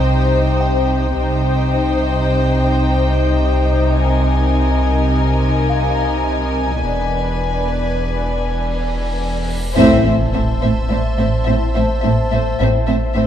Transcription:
0.00 1.13 C2 medium
0.00 1.14 C2 medium
0.00 1.13 C3 medium
0.00 1.14 D#4 medium
0.00 1.13 C5 medium
0.00 1.17 C5 medium
0.00 1.14 D#5 soft
0.00 1.13 G5 medium
0.00 1.16 G5 medium
0.61 2.26 G5 soft
1.15 6.85 C2 medium
1.15 6.81 C2 medium
1.15 6.81 C3 medium
1.15 6.80 D#4 medium
1.15 3.95 C5 medium
1.15 3.97 C5 medium
1.15 6.81 D#5 medium
1.15 3.96 G5 medium
4.00 6.81 A#4 soft
4.00 6.86 A#4 medium
4.00 9.52 G#5 medium
4.00 9.78 G#5 soft
5.69 7.39 F5 soft
6.84 9.76 E1 medium
6.84 9.52 E1 soft
6.84 9.52 E2 soft
6.84 9.52 D4 soft
6.84 9.52 B4 soft
6.84 9.77 B4 medium
6.84 9.77 D5 soft
6.84 cymbal swell soft
9.75 12.55 A1 medium
9.75 10.04 A1 medium
9.75 9.94 A2 medium
9.75 10.03 A2 medium
9.75 10.58 A2 medium
9.75 10.02 C4 medium
9.75 10.03 C4 medium
9.75 10.03 E4 medium
9.75 10.03 C5 medium
9.75 12.55 C5 medium
9.75 10.03 E5 medium
9.75 12.55 E5 medium
9.75 12.55 A5 medium
9.75 sub drop medium
10.05 10.14 A1 soft
10.05 10.13 A2 soft
10.05 10.22 A2 soft
10.05 10.13 C4 soft
10.05 10.13 C5 soft
10.05 10.13 E5 soft
10.33 10.43 A1 medium
10.33 10.42 A2 soft
10.33 10.51 A2 soft
10.33 10.42 C4 soft
10.33 10.41 C5 soft
10.33 10.42 E5 soft
10.61 10.72 A1 soft
10.61 10.71 A2 soft
10.61 10.80 A2 medium
10.61 10.70 C4 soft
10.61 10.69 C5 soft
10.61 10.70 E5 soft
10.89 11.01 A1 medium
10.89 10.97 A2 medium
10.89 11.08 A3 soft
10.89 10.98 C4 soft
10.89 11.00 C5 soft
10.89 12.55 D5 soft
10.89 10.97 E5 soft
11.18 11.26 A2 medium
11.18 11.36 A2 medium
11.18 11.28 C4 soft
11.18 11.27 C5 soft
11.18 11.26 E5 soft
11.22 11.30 A1 soft
11.46 11.57 A1 medium
11.46 11.54 A2 medium
11.46 11.64 A2 soft
11.46 11.55 C4 soft
11.46 11.67 C4 medium
11.46 11.67 E4 soft
11.46 11.55 C5 soft
11.46 11.54 E5 soft
11.75 11.86 A1 medium
11.75 11.83 A2 medium
11.75 11.93 A2 soft
11.75 11.84 C4 soft
11.75 11.83 C5 soft
11.75 11.83 E5 soft
12.02 12.14 A1 medium
12.02 12.20 A2 medium
12.02 12.12 A2 soft
12.02 12.12 C4 soft
12.02 12.13 C5 soft
12.02 12.10 E5 soft
12.30 12.41 A1 soft
12.30 12.39 A2 medium
12.30 12.48 A3 soft
12.30 12.40 C4 soft
12.30 12.41 C5 soft
12.30 12.38 E5 soft
12.57 12.68 A1 medium
12.57 13.27 A1 medium
12.57 12.68 A2 medium
12.57 12.77 A2 medium
12.57 12.79 C4 medium
12.57 12.68 C4 medium
12.57 12.79 E4 medium
12.57 13.27 C5 medium
12.57 13.27 E5 medium
12.57 12.68 E5 medium
12.57 13.27 A5 medium
12.61 12.69 C5 medium
12.87 12.97 A1 medium
12.87 12.96 A2 medium
12.87 13.05 A2 soft
12.87 12.95 C4 soft
12.87 12.96 C5 soft
12.87 12.95 E5 soft
13.14 13.25 A1 medium
13.14 13.23 A2 medium
13.14 13.27 A2 medium
13.14 13.25 C4 soft
13.14 13.24 C5 medium
13.14 13.22 E5 soft

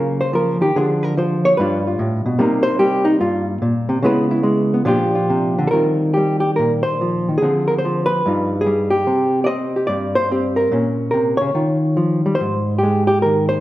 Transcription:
0.00 0.61 C#3 medium
0.00 0.33 F#3 medium
0.00 0.75 A#3 medium
0.00 0.74 F4 soft
0.00 0.19 A#4 medium
0.21 0.34 C5 medium
0.33 0.61 F3 medium
0.33 0.61 A#4 medium
0.61 0.75 D#3 medium
0.61 0.75 G4 medium
0.76 1.56 D3 medium
0.76 1.16 F3 soft
0.76 1.56 D4 medium
0.76 1.03 G#4 medium
1.03 1.16 A#4 loud
1.17 1.57 F3 medium
1.17 1.44 C5 medium
1.45 1.57 C#5 loud
1.57 1.98 G2 medium
1.57 2.37 G3 medium
1.57 2.37 D4 medium
1.57 1.86 F4 medium
1.57 1.84 B4 medium
1.87 2.37 F4 soft
1.99 2.25 A2 medium
2.26 2.38 B2 medium
2.39 3.19 C3 medium
2.39 2.78 G3 medium
2.39 4.03 A#3 medium
2.39 3.04 D#4 medium
2.39 2.62 A#4 medium
2.63 2.77 C5 loud
2.79 4.00 G3 medium
2.79 3.05 G4 medium
3.05 3.18 D#4 loud
3.20 3.61 G2 medium
3.20 3.47 F4 medium
3.62 3.88 A#2 medium
3.89 4.02 C3 medium
4.03 4.84 C#3 medium
4.03 4.42 G#3 medium
4.03 4.72 B3 medium
4.03 4.30 E4 medium
4.03 4.85 B4 medium
4.31 4.84 E4 medium
4.43 4.83 G#3 medium
4.74 4.85 B3 medium
4.85 5.71 A#2 loud
4.85 5.73 F3 medium
4.85 5.71 D4 medium
4.85 5.14 F4 medium
4.85 5.67 G4 medium
5.15 5.71 F4 medium
5.30 5.58 C3 medium
5.58 5.72 D3 medium
5.67 5.70 A4 medium
5.67 6.13 A#4 medium
5.73 7.27 D#3 medium
5.73 6.16 G3 soft
5.73 7.41 C4 soft
5.73 7.37 F4 soft
6.14 7.01 G3 medium
6.14 6.39 G4 medium
6.40 6.50 G4 medium
6.56 7.40 A#2 medium
6.56 6.72 A#4 medium
6.83 7.40 C5 loud
7.01 7.28 F3 medium
7.29 7.42 D#3 medium
7.38 8.09 G#4 medium
7.42 8.23 D3 medium
7.42 7.84 F3 soft
7.42 8.24 C4 soft
7.68 7.78 A#4 medium
7.79 8.05 C5 medium
7.85 8.25 F3 medium
8.06 8.90 B4 loud
8.26 9.07 G2 medium
8.26 8.65 G3 medium
8.26 9.06 D#4 soft
8.26 8.61 F4 soft
8.61 8.90 G#4 medium
8.66 9.05 G3 medium
8.90 9.41 G4 medium
9.07 9.88 C3 medium
9.07 9.46 C4 medium
9.44 10.30 C4 medium
9.44 9.48 D5 medium
9.44 9.88 D#5 loud
9.76 10.30 G4 medium
9.87 10.71 G2 medium
9.87 10.57 D5 loud
10.15 10.56 C5 loud
10.31 10.70 C4 medium
10.31 10.70 G4 medium
10.56 11.10 A#4 medium
10.72 11.53 A#2 medium
10.72 11.53 C#4 medium
11.11 11.40 C3 medium
11.11 11.37 A#4 medium
11.37 12.35 C#5 loud
11.41 11.54 C#3 medium
11.55 12.37 D#3 medium
11.55 12.81 F4 soft
11.97 12.25 F3 medium
12.26 12.39 G3 medium
12.35 12.78 C5 medium
12.40 13.60 G#2 medium
12.78 13.06 G4 medium
12.83 13.60 G#3 medium
13.07 13.22 G4 medium
13.22 13.60 D#3 medium
13.22 13.48 A#4 medium
13.49 13.60 C5 loud

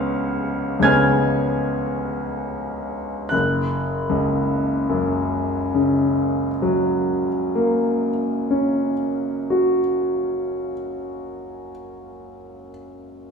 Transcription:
0.00 0.77 C#2 medium
0.00 0.77 C#3 soft
0.00 0.78 B3 medium
0.00 0.79 C#4 medium
0.00 0.79 F5 medium
0.00 0.79 C#6 medium
0.00 0.82 F6 loud
0.79 3.25 C#2 soft
0.79 3.26 C#3 soft
0.79 3.27 B3 soft
0.79 3.31 G#6 medium
0.84 3.27 C#4 soft
0.84 3.27 G#5 medium
0.84 3.27 F6 medium
3.29 6.50 F#1 soft
3.29 6.47 F#6 medium
4.10 7.28 C#2 soft
4.89 8.08 F#2 soft
5.75 8.93 C#3 soft
6.62 9.80 F#3 soft
7.55 10.74 A#3 soft
8.51 11.69 C#4 soft
9.50 12.68 F#4 soft

